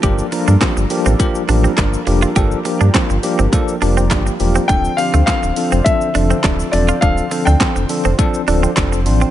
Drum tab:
HH |x-o-x-o-x-o-x-o-|x-o-x-o-x-o-x-o-|x-o-x-o-x-o-x-o-|x-o-x-o-x-o-x-o-|
SH |xxxxxxxxxxxxxxxx|xxxxxxxxxxxxxxxx|xxxxxxxxxxxxxxxx|xxxxxxxxxxxxxxxx|
CP |----x-------x---|----x-------x---|----x-------x---|----x-------x---|
SD |----o-------o---|----o-------o---|----o-------o---|----o-------o---|
BD |o---o---o---o---|o---o---o---o---|o---o---o---o---|o---o---o---o---|